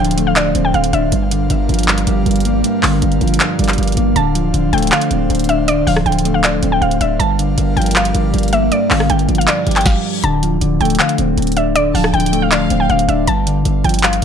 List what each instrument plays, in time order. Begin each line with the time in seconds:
Already playing: analog synth pad D3 D4 C5 F5, clean electric guitar F3 D4
0.00 808-style bass D1, clean electric guitar D3, synth pluck G5
0.05 closed hi-hat
0.11 closed hi-hat
0.17 clean electric guitar A3, closed hi-hat
0.27 synth pluck F5
0.36 clean electric guitar D3, synth pluck D5, clap, closed hi-hat
0.55 808-style bass D1, clean electric guitar C4, closed hi-hat
0.65 synth pluck G5
0.74 808-style bass D1, clean electric guitar D3, synth pluck F5, closed hi-hat
0.84 closed hi-hat
0.93 808-style bass D1, clean electric guitar D4, synth pluck E5, closed hi-hat
1.12 808-style bass G1, clean electric guitar G2, analog synth pad G3 A#4, closed hi-hat
1.31 clean electric guitar D3, closed hi-hat
1.50 808-style bass G1, clean electric guitar G2, closed hi-hat
1.69 808-style bass G1, clean electric guitar F3, closed hi-hat
1.74 closed hi-hat
1.79 closed hi-hat
1.83 closed hi-hat
1.88 clean electric guitar G2, clap
1.98 closed hi-hat
2.07 808-style bass G1, clean electric guitar G3, closed hi-hat
2.26 808-style bass G1, clean electric guitar G2, closed hi-hat
2.31 closed hi-hat
2.36 closed hi-hat
2.40 closed hi-hat
2.45 clean electric guitar A#3, closed hi-hat
2.64 clean electric guitar G2, closed hi-hat
2.82 808-style bass G1, clean electric guitar D3, clap, open hi-hat
3.02 808-style bass G1, clean electric guitar G2, closed hi-hat
3.12 closed hi-hat
3.21 808-style bass G1, clean electric guitar F3, closed hi-hat
3.27 closed hi-hat
3.34 closed hi-hat
3.40 clean electric guitar G2, clap, closed hi-hat
3.59 808-style bass G1, clean electric guitar G3, closed hi-hat
3.64 closed hi-hat
3.69 clap, closed hi-hat
3.73 closed hi-hat
3.78 808-style bass G1, clean electric guitar G2, closed hi-hat
3.83 closed hi-hat
3.88 closed hi-hat
3.92 closed hi-hat
3.97 808-style bass G1, clean electric guitar A#3, closed hi-hat
4.16 808-style bass D1, clean electric guitar D3, analog synth pad D3 C5, synth pluck A5, closed hi-hat
4.35 clean electric guitar F3, closed hi-hat
4.53 808-style bass D1, clean electric guitar D3, closed hi-hat
4.73 808-style bass D1, clean electric guitar A3, synth pluck G5, closed hi-hat
4.78 closed hi-hat
4.82 closed hi-hat
4.87 closed hi-hat
4.92 clean electric guitar D3, synth pluck F5, clap
5.01 closed hi-hat
5.11 808-style bass D1, clean electric guitar C4, closed hi-hat
5.30 808-style bass D1, clean electric guitar D3, closed hi-hat
5.35 closed hi-hat
5.39 closed hi-hat
5.44 closed hi-hat
5.49 clean electric guitar D4, synth pluck E5, closed hi-hat
5.68 clean electric guitar D3, synth pluck D5, closed hi-hat
5.87 808-style bass D1, clean electric guitar F3, synth pluck F5, open hi-hat
5.96 cross-stick
6.06 808-style bass D1, clean electric guitar D3, synth pluck G5, closed hi-hat
6.12 closed hi-hat
6.19 closed hi-hat
6.24 clean electric guitar A3, closed hi-hat
6.34 synth pluck F5
6.44 clean electric guitar D3, synth pluck D5, clap, closed hi-hat
6.63 808-style bass D1, clean electric guitar C4, closed hi-hat
6.72 synth pluck G5
6.82 808-style bass D1, clean electric guitar D3, synth pluck F5, closed hi-hat
6.91 closed hi-hat
7.01 808-style bass D1, clean electric guitar D4, synth pluck E5, closed hi-hat
7.19 808-style bass G1, clean electric guitar G2, analog synth pad G3 D4 A#4 F5, synth pluck A5, closed hi-hat
7.39 clean electric guitar D3, closed hi-hat
7.58 808-style bass G1, clean electric guitar G2, closed hi-hat
7.76 808-style bass G1, clean electric guitar F3, synth pluck G5, closed hi-hat
7.82 closed hi-hat
7.86 closed hi-hat
7.91 closed hi-hat
7.96 clean electric guitar G2, synth pluck F5, clap
8.05 closed hi-hat
8.14 808-style bass G1, clean electric guitar G3, closed hi-hat
8.33 808-style bass G1, clean electric guitar G2, closed hi-hat
8.38 closed hi-hat
8.43 closed hi-hat
8.48 closed hi-hat
8.53 clean electric guitar A#3, synth pluck E5, closed hi-hat
8.72 clean electric guitar G2, synth pluck D5, closed hi-hat
8.90 808-style bass G1, clean electric guitar D3, synth pluck F5, clap, open hi-hat
9.00 cross-stick
9.10 808-style bass G1, clean electric guitar G2, synth pluck G5, closed hi-hat
9.19 closed hi-hat
9.29 808-style bass G1, clean electric guitar F3, closed hi-hat
9.35 synth pluck F5, closed hi-hat
9.41 closed hi-hat
9.48 clean electric guitar G2, synth pluck D5, clap, closed hi-hat, reverse cymbal
9.67 808-style bass G1, clean electric guitar G3, closed hi-hat
9.71 closed hi-hat
9.76 synth pluck G5, clap, closed hi-hat
9.81 closed hi-hat
9.86 synth pluck F5, kick, snare
10.24 808-style bass D1, clean electric guitar D3, synth pluck A5, closed hi-hat
10.43 clean electric guitar F3, closed hi-hat
10.61 808-style bass D1, clean electric guitar D3, closed hi-hat
10.81 808-style bass D1, clean electric guitar A3, synth pluck G5, closed hi-hat
10.85 closed hi-hat
10.90 closed hi-hat
10.95 closed hi-hat
10.99 clean electric guitar D3, synth pluck F5, clap, closed hi-hat
11.09 closed hi-hat
11.18 808-style bass D1, clean electric guitar C4, closed hi-hat
11.38 808-style bass D1, clean electric guitar D3, closed hi-hat
11.42 closed hi-hat
11.47 closed hi-hat
11.52 closed hi-hat
11.57 clean electric guitar D4, synth pluck E5, closed hi-hat
11.76 clean electric guitar D3, synth pluck D5, closed hi-hat
11.94 808-style bass D1, clean electric guitar F3, synth pluck F5, violin section A5, open hi-hat
12.04 cross-stick
12.14 808-style bass D1, clean electric guitar D3, synth pluck G5, violin section G5, closed hi-hat
12.20 closed hi-hat
12.26 closed hi-hat
12.32 clean electric guitar A3, closed hi-hat
12.42 synth pluck F5
12.51 clean electric guitar D3, synth pluck D5, violin section F5, clap, closed hi-hat
12.70 808-style bass D1, clean electric guitar C4, closed hi-hat
12.80 synth pluck G5
12.90 808-style bass D1, clean electric guitar D3, synth pluck F5, closed hi-hat
12.99 closed hi-hat
13.09 808-style bass D1, clean electric guitar D4, synth pluck E5, closed hi-hat
13.27 808-style bass G1, clean electric guitar G2, synth pluck A5, closed hi-hat
13.47 clean electric guitar D3, closed hi-hat
13.65 808-style bass G1, clean electric guitar G2, closed hi-hat
13.84 808-style bass G1, clean electric guitar F3, synth pluck G5, closed hi-hat
13.89 closed hi-hat
13.94 closed hi-hat
13.99 closed hi-hat
14.03 clean electric guitar G2, synth pluck F5, clap, closed hi-hat
14.13 closed hi-hat